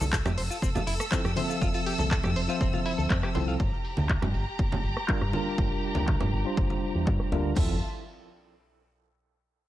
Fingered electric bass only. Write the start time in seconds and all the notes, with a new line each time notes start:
0.01 C2
0.25 F2
0.37 F1
0.62 F1
0.87 F1
1.25 F2
1.61 F1
1.99 C2
2.24 F2
2.36 F1
2.61 F1
2.98 D2
3.10 F2
3.35 C2
3.60 G1
3.97 D2
4.22 G2
4.34 G1
4.59 G1
4.83 G1
5.21 G2
5.58 G1
5.96 D2
6.21 G2
6.33 G1
6.57 G1
6.95 E2
7.07 G2
7.32 D2
7.56 F1